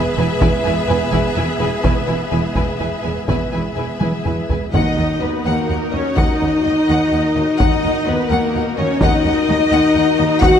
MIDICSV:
0, 0, Header, 1, 10, 480
1, 0, Start_track
1, 0, Tempo, 473934
1, 422, Time_signature, 6, 3, 24, 8
1, 2345, Tempo, 483871
1, 5225, Tempo, 473560
1, 10676, End_track
2, 0, Start_track
2, 0, Title_t, "Violin section"
2, 0, Program_c, 0, 48
2, 187, Note_on_c, 0, 80, 58
2, 268, Note_off_c, 0, 80, 0
2, 415, Note_on_c, 0, 80, 69
2, 496, Note_off_c, 0, 80, 0
2, 650, Note_on_c, 0, 80, 60
2, 731, Note_off_c, 0, 80, 0
2, 895, Note_on_c, 0, 80, 56
2, 976, Note_off_c, 0, 80, 0
2, 1124, Note_on_c, 0, 80, 58
2, 1205, Note_off_c, 0, 80, 0
2, 1375, Note_on_c, 0, 80, 54
2, 1456, Note_off_c, 0, 80, 0
2, 1618, Note_on_c, 0, 80, 54
2, 1699, Note_off_c, 0, 80, 0
2, 1850, Note_on_c, 0, 80, 63
2, 1931, Note_off_c, 0, 80, 0
2, 2094, Note_on_c, 0, 80, 50
2, 2175, Note_off_c, 0, 80, 0
2, 2329, Note_on_c, 0, 80, 46
2, 2409, Note_off_c, 0, 80, 0
2, 2572, Note_on_c, 0, 80, 48
2, 2652, Note_off_c, 0, 80, 0
2, 2813, Note_on_c, 0, 80, 42
2, 2893, Note_off_c, 0, 80, 0
2, 3047, Note_on_c, 0, 80, 39
2, 3126, Note_off_c, 0, 80, 0
2, 3294, Note_on_c, 0, 80, 43
2, 3373, Note_off_c, 0, 80, 0
2, 3535, Note_on_c, 0, 80, 37
2, 3615, Note_off_c, 0, 80, 0
2, 3777, Note_on_c, 0, 80, 32
2, 3857, Note_off_c, 0, 80, 0
2, 4013, Note_on_c, 0, 80, 36
2, 4093, Note_off_c, 0, 80, 0
2, 4257, Note_on_c, 0, 80, 31
2, 4336, Note_off_c, 0, 80, 0
2, 4506, Note_on_c, 0, 80, 30
2, 4586, Note_off_c, 0, 80, 0
2, 4740, Note_on_c, 0, 78, 57
2, 4966, Note_off_c, 0, 78, 0
2, 4982, Note_on_c, 0, 78, 36
2, 5061, Note_off_c, 0, 78, 0
2, 5215, Note_on_c, 0, 75, 46
2, 5296, Note_off_c, 0, 75, 0
2, 5450, Note_on_c, 0, 78, 53
2, 5681, Note_off_c, 0, 78, 0
2, 5694, Note_on_c, 0, 78, 44
2, 5775, Note_off_c, 0, 78, 0
2, 5927, Note_on_c, 0, 75, 42
2, 6008, Note_off_c, 0, 75, 0
2, 6173, Note_on_c, 0, 78, 56
2, 6405, Note_off_c, 0, 78, 0
2, 6418, Note_on_c, 0, 78, 35
2, 6499, Note_off_c, 0, 78, 0
2, 6663, Note_on_c, 0, 75, 43
2, 6744, Note_off_c, 0, 75, 0
2, 6909, Note_on_c, 0, 78, 59
2, 7135, Note_off_c, 0, 78, 0
2, 7152, Note_on_c, 0, 78, 43
2, 7233, Note_off_c, 0, 78, 0
2, 7386, Note_on_c, 0, 75, 50
2, 7467, Note_off_c, 0, 75, 0
2, 7631, Note_on_c, 0, 78, 67
2, 7857, Note_off_c, 0, 78, 0
2, 7874, Note_on_c, 0, 78, 49
2, 7955, Note_off_c, 0, 78, 0
2, 8109, Note_on_c, 0, 75, 51
2, 8190, Note_off_c, 0, 75, 0
2, 8346, Note_on_c, 0, 78, 61
2, 8573, Note_off_c, 0, 78, 0
2, 8596, Note_on_c, 0, 78, 47
2, 8677, Note_off_c, 0, 78, 0
2, 8829, Note_on_c, 0, 75, 57
2, 8911, Note_off_c, 0, 75, 0
2, 9070, Note_on_c, 0, 78, 66
2, 9293, Note_off_c, 0, 78, 0
2, 9311, Note_on_c, 0, 78, 52
2, 9392, Note_off_c, 0, 78, 0
2, 9551, Note_on_c, 0, 75, 48
2, 9632, Note_off_c, 0, 75, 0
2, 9788, Note_on_c, 0, 78, 68
2, 10010, Note_off_c, 0, 78, 0
2, 10022, Note_on_c, 0, 78, 65
2, 10103, Note_off_c, 0, 78, 0
2, 10249, Note_on_c, 0, 75, 66
2, 10330, Note_off_c, 0, 75, 0
2, 10492, Note_on_c, 0, 78, 81
2, 10676, Note_off_c, 0, 78, 0
2, 10676, End_track
3, 0, Start_track
3, 0, Title_t, "Violin section"
3, 0, Program_c, 1, 48
3, 180, Note_on_c, 1, 71, 63
3, 261, Note_off_c, 1, 71, 0
3, 412, Note_on_c, 1, 71, 72
3, 493, Note_off_c, 1, 71, 0
3, 653, Note_on_c, 1, 71, 56
3, 734, Note_off_c, 1, 71, 0
3, 895, Note_on_c, 1, 71, 64
3, 976, Note_off_c, 1, 71, 0
3, 1140, Note_on_c, 1, 71, 58
3, 1221, Note_off_c, 1, 71, 0
3, 1379, Note_on_c, 1, 71, 58
3, 1460, Note_off_c, 1, 71, 0
3, 1613, Note_on_c, 1, 71, 56
3, 1695, Note_off_c, 1, 71, 0
3, 1859, Note_on_c, 1, 71, 59
3, 1940, Note_off_c, 1, 71, 0
3, 2090, Note_on_c, 1, 71, 51
3, 2171, Note_off_c, 1, 71, 0
3, 2341, Note_on_c, 1, 71, 48
3, 2420, Note_off_c, 1, 71, 0
3, 2583, Note_on_c, 1, 71, 47
3, 2662, Note_off_c, 1, 71, 0
3, 2818, Note_on_c, 1, 71, 46
3, 2897, Note_off_c, 1, 71, 0
3, 3058, Note_on_c, 1, 71, 38
3, 3137, Note_off_c, 1, 71, 0
3, 3303, Note_on_c, 1, 71, 43
3, 3383, Note_off_c, 1, 71, 0
3, 3544, Note_on_c, 1, 71, 35
3, 3624, Note_off_c, 1, 71, 0
3, 3779, Note_on_c, 1, 71, 35
3, 3859, Note_off_c, 1, 71, 0
3, 4029, Note_on_c, 1, 71, 33
3, 4108, Note_off_c, 1, 71, 0
3, 4272, Note_on_c, 1, 71, 34
3, 4351, Note_off_c, 1, 71, 0
3, 4511, Note_on_c, 1, 71, 32
3, 4591, Note_off_c, 1, 71, 0
3, 4745, Note_on_c, 1, 75, 57
3, 5189, Note_off_c, 1, 75, 0
3, 5221, Note_on_c, 1, 71, 50
3, 5464, Note_off_c, 1, 71, 0
3, 5471, Note_on_c, 1, 70, 50
3, 5941, Note_off_c, 1, 70, 0
3, 5946, Note_on_c, 1, 73, 57
3, 6189, Note_off_c, 1, 73, 0
3, 6193, Note_on_c, 1, 75, 52
3, 7629, Note_off_c, 1, 75, 0
3, 7641, Note_on_c, 1, 75, 66
3, 8109, Note_off_c, 1, 75, 0
3, 8119, Note_on_c, 1, 71, 63
3, 8349, Note_on_c, 1, 70, 57
3, 8357, Note_off_c, 1, 71, 0
3, 8830, Note_off_c, 1, 70, 0
3, 8837, Note_on_c, 1, 73, 68
3, 9068, Note_off_c, 1, 73, 0
3, 9069, Note_on_c, 1, 75, 75
3, 10490, Note_on_c, 1, 78, 87
3, 10503, Note_off_c, 1, 75, 0
3, 10676, Note_off_c, 1, 78, 0
3, 10676, End_track
4, 0, Start_track
4, 0, Title_t, "String section"
4, 0, Program_c, 2, 48
4, 0, Note_on_c, 2, 59, 89
4, 0, Note_on_c, 2, 68, 90
4, 0, Note_on_c, 2, 71, 91
4, 0, Note_on_c, 2, 76, 90
4, 3294, Note_off_c, 2, 68, 0
4, 3295, Note_off_c, 2, 71, 0
4, 3296, Note_off_c, 2, 76, 0
4, 3299, Note_off_c, 2, 59, 0
4, 3306, Note_on_c, 2, 68, 50
4, 3307, Note_on_c, 2, 71, 50
4, 3307, Note_on_c, 2, 76, 55
4, 3311, Note_on_c, 2, 59, 53
4, 4711, Note_off_c, 2, 68, 0
4, 4712, Note_off_c, 2, 71, 0
4, 4712, Note_off_c, 2, 76, 0
4, 4714, Note_off_c, 2, 59, 0
4, 4750, Note_on_c, 2, 63, 57
4, 4751, Note_on_c, 2, 75, 56
4, 4752, Note_on_c, 2, 66, 58
4, 4753, Note_on_c, 2, 70, 57
4, 9031, Note_off_c, 2, 63, 0
4, 9031, Note_off_c, 2, 66, 0
4, 9031, Note_off_c, 2, 75, 0
4, 9032, Note_off_c, 2, 70, 0
4, 9069, Note_on_c, 2, 63, 81
4, 9072, Note_on_c, 2, 70, 79
4, 9076, Note_on_c, 2, 75, 79
4, 9077, Note_on_c, 2, 66, 75
4, 10465, Note_off_c, 2, 70, 0
4, 10499, Note_on_c, 2, 71, 91
4, 10676, Note_off_c, 2, 63, 0
4, 10676, Note_off_c, 2, 66, 0
4, 10676, Note_off_c, 2, 71, 0
4, 10676, Note_off_c, 2, 75, 0
4, 10676, End_track
5, 0, Start_track
5, 0, Title_t, "Viola section"
5, 0, Program_c, 3, 48
5, 188, Note_on_c, 3, 64, 55
5, 270, Note_off_c, 3, 64, 0
5, 421, Note_on_c, 3, 64, 70
5, 502, Note_off_c, 3, 64, 0
5, 665, Note_on_c, 3, 64, 55
5, 746, Note_off_c, 3, 64, 0
5, 901, Note_on_c, 3, 64, 61
5, 982, Note_off_c, 3, 64, 0
5, 1137, Note_on_c, 3, 64, 68
5, 1218, Note_off_c, 3, 64, 0
5, 1382, Note_on_c, 3, 64, 55
5, 1463, Note_off_c, 3, 64, 0
5, 1627, Note_on_c, 3, 64, 56
5, 1708, Note_off_c, 3, 64, 0
5, 1871, Note_on_c, 3, 64, 68
5, 1952, Note_off_c, 3, 64, 0
5, 2112, Note_on_c, 3, 64, 48
5, 2193, Note_off_c, 3, 64, 0
5, 2353, Note_on_c, 3, 64, 47
5, 2432, Note_off_c, 3, 64, 0
5, 2586, Note_on_c, 3, 64, 52
5, 2666, Note_off_c, 3, 64, 0
5, 2827, Note_on_c, 3, 64, 40
5, 2907, Note_off_c, 3, 64, 0
5, 3057, Note_on_c, 3, 64, 34
5, 3137, Note_off_c, 3, 64, 0
5, 3304, Note_on_c, 3, 64, 43
5, 3383, Note_off_c, 3, 64, 0
5, 3552, Note_on_c, 3, 64, 33
5, 3631, Note_off_c, 3, 64, 0
5, 3793, Note_on_c, 3, 64, 33
5, 3872, Note_off_c, 3, 64, 0
5, 4026, Note_on_c, 3, 64, 39
5, 4105, Note_off_c, 3, 64, 0
5, 4273, Note_on_c, 3, 64, 34
5, 4352, Note_off_c, 3, 64, 0
5, 4507, Note_on_c, 3, 64, 29
5, 4587, Note_off_c, 3, 64, 0
5, 4748, Note_on_c, 3, 63, 54
5, 5190, Note_off_c, 3, 63, 0
5, 5220, Note_on_c, 3, 59, 46
5, 5458, Note_on_c, 3, 58, 51
5, 5459, Note_off_c, 3, 59, 0
5, 5944, Note_off_c, 3, 58, 0
5, 5951, Note_on_c, 3, 61, 50
5, 6186, Note_off_c, 3, 61, 0
5, 6190, Note_on_c, 3, 63, 58
5, 7607, Note_off_c, 3, 63, 0
5, 7647, Note_on_c, 3, 63, 67
5, 8111, Note_off_c, 3, 63, 0
5, 8117, Note_on_c, 3, 59, 62
5, 8356, Note_off_c, 3, 59, 0
5, 8363, Note_on_c, 3, 58, 56
5, 8828, Note_off_c, 3, 58, 0
5, 8829, Note_on_c, 3, 61, 61
5, 9064, Note_on_c, 3, 63, 69
5, 9069, Note_off_c, 3, 61, 0
5, 10472, Note_off_c, 3, 63, 0
5, 10500, Note_on_c, 3, 66, 83
5, 10676, Note_off_c, 3, 66, 0
5, 10676, End_track
6, 0, Start_track
6, 0, Title_t, "French horn section"
6, 0, Program_c, 4, 60
6, 184, Note_on_c, 4, 59, 73
6, 184, Note_on_c, 4, 68, 71
6, 267, Note_off_c, 4, 59, 0
6, 267, Note_off_c, 4, 68, 0
6, 900, Note_on_c, 4, 59, 66
6, 908, Note_on_c, 4, 68, 66
6, 984, Note_off_c, 4, 59, 0
6, 989, Note_off_c, 4, 68, 0
6, 1633, Note_on_c, 4, 68, 61
6, 1634, Note_on_c, 4, 59, 62
6, 1713, Note_off_c, 4, 59, 0
6, 1713, Note_off_c, 4, 68, 0
6, 2349, Note_on_c, 4, 59, 53
6, 2349, Note_on_c, 4, 68, 51
6, 2430, Note_off_c, 4, 59, 0
6, 2430, Note_off_c, 4, 68, 0
6, 3055, Note_on_c, 4, 59, 47
6, 3061, Note_on_c, 4, 68, 51
6, 3142, Note_off_c, 4, 59, 0
6, 3146, Note_off_c, 4, 68, 0
6, 3785, Note_on_c, 4, 68, 43
6, 3786, Note_on_c, 4, 59, 37
6, 3870, Note_off_c, 4, 68, 0
6, 3871, Note_off_c, 4, 59, 0
6, 4509, Note_on_c, 4, 68, 38
6, 4515, Note_on_c, 4, 59, 37
6, 4594, Note_off_c, 4, 68, 0
6, 4598, Note_off_c, 4, 59, 0
6, 4744, Note_on_c, 4, 63, 72
6, 5188, Note_off_c, 4, 63, 0
6, 5214, Note_on_c, 4, 59, 59
6, 5446, Note_on_c, 4, 58, 53
6, 5460, Note_off_c, 4, 59, 0
6, 5938, Note_off_c, 4, 58, 0
6, 5954, Note_on_c, 4, 61, 62
6, 6192, Note_off_c, 4, 61, 0
6, 6201, Note_on_c, 4, 63, 79
6, 7621, Note_off_c, 4, 63, 0
6, 7633, Note_on_c, 4, 63, 82
6, 8105, Note_off_c, 4, 63, 0
6, 8111, Note_on_c, 4, 59, 67
6, 8331, Note_on_c, 4, 58, 67
6, 8348, Note_off_c, 4, 59, 0
6, 8814, Note_on_c, 4, 61, 82
6, 8821, Note_off_c, 4, 58, 0
6, 9062, Note_off_c, 4, 61, 0
6, 9072, Note_on_c, 4, 63, 89
6, 10505, Note_off_c, 4, 63, 0
6, 10508, Note_on_c, 4, 66, 124
6, 10676, Note_off_c, 4, 66, 0
6, 10676, End_track
7, 0, Start_track
7, 0, Title_t, "Timpani"
7, 0, Program_c, 5, 47
7, 4745, Note_on_c, 5, 51, 64
7, 5423, Note_off_c, 5, 51, 0
7, 10676, End_track
8, 0, Start_track
8, 0, Title_t, "Cello section"
8, 0, Program_c, 6, 48
8, 173, Note_on_c, 6, 40, 66
8, 254, Note_off_c, 6, 40, 0
8, 411, Note_on_c, 6, 40, 68
8, 492, Note_off_c, 6, 40, 0
8, 650, Note_on_c, 6, 40, 68
8, 731, Note_off_c, 6, 40, 0
8, 885, Note_on_c, 6, 40, 70
8, 966, Note_off_c, 6, 40, 0
8, 1124, Note_on_c, 6, 40, 72
8, 1205, Note_off_c, 6, 40, 0
8, 1368, Note_on_c, 6, 40, 57
8, 1449, Note_off_c, 6, 40, 0
8, 1611, Note_on_c, 6, 40, 60
8, 1692, Note_off_c, 6, 40, 0
8, 1858, Note_on_c, 6, 40, 68
8, 1939, Note_off_c, 6, 40, 0
8, 2100, Note_on_c, 6, 40, 58
8, 2181, Note_off_c, 6, 40, 0
8, 2343, Note_on_c, 6, 40, 58
8, 2423, Note_off_c, 6, 40, 0
8, 2578, Note_on_c, 6, 40, 58
8, 2657, Note_off_c, 6, 40, 0
8, 2821, Note_on_c, 6, 40, 47
8, 2900, Note_off_c, 6, 40, 0
8, 3070, Note_on_c, 6, 40, 40
8, 3150, Note_off_c, 6, 40, 0
8, 3310, Note_on_c, 6, 40, 44
8, 3390, Note_off_c, 6, 40, 0
8, 3548, Note_on_c, 6, 40, 42
8, 3628, Note_off_c, 6, 40, 0
8, 3787, Note_on_c, 6, 40, 39
8, 3866, Note_off_c, 6, 40, 0
8, 4033, Note_on_c, 6, 40, 41
8, 4112, Note_off_c, 6, 40, 0
8, 4265, Note_on_c, 6, 40, 38
8, 4344, Note_off_c, 6, 40, 0
8, 4511, Note_on_c, 6, 40, 31
8, 4591, Note_off_c, 6, 40, 0
8, 4752, Note_on_c, 6, 39, 54
8, 4831, Note_off_c, 6, 39, 0
8, 4988, Note_on_c, 6, 39, 43
8, 5068, Note_off_c, 6, 39, 0
8, 5222, Note_on_c, 6, 39, 47
8, 5303, Note_off_c, 6, 39, 0
8, 5466, Note_on_c, 6, 39, 59
8, 5547, Note_off_c, 6, 39, 0
8, 5707, Note_on_c, 6, 39, 39
8, 5788, Note_off_c, 6, 39, 0
8, 5948, Note_on_c, 6, 39, 38
8, 6029, Note_off_c, 6, 39, 0
8, 6183, Note_on_c, 6, 39, 61
8, 6265, Note_off_c, 6, 39, 0
8, 6431, Note_on_c, 6, 39, 47
8, 6512, Note_off_c, 6, 39, 0
8, 6680, Note_on_c, 6, 39, 41
8, 6761, Note_off_c, 6, 39, 0
8, 6920, Note_on_c, 6, 39, 61
8, 7002, Note_off_c, 6, 39, 0
8, 7154, Note_on_c, 6, 39, 44
8, 7235, Note_off_c, 6, 39, 0
8, 7392, Note_on_c, 6, 39, 36
8, 7473, Note_off_c, 6, 39, 0
8, 7637, Note_on_c, 6, 39, 66
8, 7719, Note_off_c, 6, 39, 0
8, 7877, Note_on_c, 6, 39, 44
8, 7958, Note_off_c, 6, 39, 0
8, 8115, Note_on_c, 6, 39, 47
8, 8196, Note_off_c, 6, 39, 0
8, 8357, Note_on_c, 6, 39, 70
8, 8438, Note_off_c, 6, 39, 0
8, 8598, Note_on_c, 6, 39, 51
8, 8679, Note_off_c, 6, 39, 0
8, 8837, Note_on_c, 6, 39, 48
8, 8918, Note_off_c, 6, 39, 0
8, 9077, Note_on_c, 6, 39, 76
8, 9158, Note_off_c, 6, 39, 0
8, 9309, Note_on_c, 6, 39, 59
8, 9390, Note_off_c, 6, 39, 0
8, 9549, Note_on_c, 6, 39, 63
8, 9630, Note_off_c, 6, 39, 0
8, 9786, Note_on_c, 6, 39, 76
8, 9867, Note_off_c, 6, 39, 0
8, 10015, Note_on_c, 6, 39, 51
8, 10096, Note_off_c, 6, 39, 0
8, 10260, Note_on_c, 6, 39, 54
8, 10341, Note_off_c, 6, 39, 0
8, 10496, Note_on_c, 6, 39, 81
8, 10577, Note_off_c, 6, 39, 0
8, 10676, End_track
9, 0, Start_track
9, 0, Title_t, "Double bass section"
9, 0, Program_c, 7, 48
9, 180, Note_on_c, 7, 28, 69
9, 261, Note_off_c, 7, 28, 0
9, 414, Note_on_c, 7, 28, 80
9, 495, Note_off_c, 7, 28, 0
9, 661, Note_on_c, 7, 28, 70
9, 742, Note_off_c, 7, 28, 0
9, 903, Note_on_c, 7, 28, 62
9, 984, Note_off_c, 7, 28, 0
9, 1139, Note_on_c, 7, 28, 69
9, 1220, Note_off_c, 7, 28, 0
9, 1389, Note_on_c, 7, 28, 60
9, 1470, Note_off_c, 7, 28, 0
9, 1623, Note_on_c, 7, 28, 65
9, 1704, Note_off_c, 7, 28, 0
9, 1870, Note_on_c, 7, 28, 70
9, 1951, Note_off_c, 7, 28, 0
9, 2111, Note_on_c, 7, 28, 56
9, 2192, Note_off_c, 7, 28, 0
9, 2354, Note_on_c, 7, 28, 52
9, 2433, Note_off_c, 7, 28, 0
9, 2595, Note_on_c, 7, 28, 56
9, 2674, Note_off_c, 7, 28, 0
9, 2830, Note_on_c, 7, 28, 44
9, 2909, Note_off_c, 7, 28, 0
9, 3082, Note_on_c, 7, 28, 47
9, 3162, Note_off_c, 7, 28, 0
9, 3309, Note_on_c, 7, 28, 45
9, 3389, Note_off_c, 7, 28, 0
9, 3551, Note_on_c, 7, 28, 41
9, 3630, Note_off_c, 7, 28, 0
9, 3789, Note_on_c, 7, 28, 37
9, 3868, Note_off_c, 7, 28, 0
9, 4036, Note_on_c, 7, 28, 40
9, 4115, Note_off_c, 7, 28, 0
9, 4273, Note_on_c, 7, 28, 37
9, 4353, Note_off_c, 7, 28, 0
9, 4511, Note_on_c, 7, 28, 37
9, 4590, Note_off_c, 7, 28, 0
9, 4750, Note_on_c, 7, 39, 53
9, 4829, Note_off_c, 7, 39, 0
9, 4986, Note_on_c, 7, 39, 41
9, 5065, Note_off_c, 7, 39, 0
9, 5231, Note_on_c, 7, 39, 41
9, 5313, Note_off_c, 7, 39, 0
9, 5460, Note_on_c, 7, 39, 65
9, 5541, Note_off_c, 7, 39, 0
9, 5708, Note_on_c, 7, 39, 38
9, 5789, Note_off_c, 7, 39, 0
9, 5951, Note_on_c, 7, 39, 43
9, 6032, Note_off_c, 7, 39, 0
9, 6193, Note_on_c, 7, 39, 63
9, 6274, Note_off_c, 7, 39, 0
9, 6430, Note_on_c, 7, 39, 41
9, 6511, Note_off_c, 7, 39, 0
9, 6671, Note_on_c, 7, 39, 37
9, 6752, Note_off_c, 7, 39, 0
9, 6913, Note_on_c, 7, 39, 63
9, 6994, Note_off_c, 7, 39, 0
9, 7156, Note_on_c, 7, 39, 44
9, 7237, Note_off_c, 7, 39, 0
9, 7395, Note_on_c, 7, 39, 50
9, 7477, Note_off_c, 7, 39, 0
9, 7642, Note_on_c, 7, 39, 68
9, 7723, Note_off_c, 7, 39, 0
9, 7882, Note_on_c, 7, 39, 45
9, 7963, Note_off_c, 7, 39, 0
9, 8123, Note_on_c, 7, 39, 43
9, 8204, Note_off_c, 7, 39, 0
9, 8355, Note_on_c, 7, 39, 74
9, 8436, Note_off_c, 7, 39, 0
9, 8600, Note_on_c, 7, 39, 45
9, 8682, Note_off_c, 7, 39, 0
9, 8841, Note_on_c, 7, 39, 57
9, 8922, Note_off_c, 7, 39, 0
9, 9071, Note_on_c, 7, 39, 72
9, 9152, Note_off_c, 7, 39, 0
9, 9301, Note_on_c, 7, 39, 50
9, 9382, Note_off_c, 7, 39, 0
9, 9544, Note_on_c, 7, 39, 58
9, 9625, Note_off_c, 7, 39, 0
9, 9781, Note_on_c, 7, 39, 81
9, 9862, Note_off_c, 7, 39, 0
9, 10024, Note_on_c, 7, 39, 53
9, 10105, Note_off_c, 7, 39, 0
9, 10260, Note_on_c, 7, 39, 59
9, 10341, Note_off_c, 7, 39, 0
9, 10502, Note_on_c, 7, 39, 82
9, 10583, Note_off_c, 7, 39, 0
9, 10676, End_track
10, 0, Start_track
10, 0, Title_t, "Taiko and cinematic ensemble drums"
10, 421, Note_on_c, 9, 41, 103
10, 522, Note_off_c, 9, 41, 0
10, 1139, Note_on_c, 9, 41, 76
10, 1241, Note_off_c, 9, 41, 0
10, 1863, Note_on_c, 9, 41, 95
10, 1964, Note_off_c, 9, 41, 0
10, 2578, Note_on_c, 9, 41, 72
10, 2677, Note_off_c, 9, 41, 0
10, 3303, Note_on_c, 9, 41, 89
10, 3402, Note_off_c, 9, 41, 0
10, 4025, Note_on_c, 9, 48, 64
10, 4124, Note_off_c, 9, 48, 0
10, 4270, Note_on_c, 9, 45, 66
10, 4369, Note_off_c, 9, 45, 0
10, 4508, Note_on_c, 9, 43, 70
10, 4608, Note_off_c, 9, 43, 0
10, 4751, Note_on_c, 9, 41, 91
10, 4850, Note_off_c, 9, 41, 0
10, 6190, Note_on_c, 9, 41, 96
10, 6292, Note_off_c, 9, 41, 0
10, 7641, Note_on_c, 9, 41, 96
10, 7742, Note_off_c, 9, 41, 0
10, 9072, Note_on_c, 9, 41, 94
10, 9174, Note_off_c, 9, 41, 0
10, 10498, Note_on_c, 9, 41, 98
10, 10599, Note_off_c, 9, 41, 0
10, 10676, End_track
0, 0, End_of_file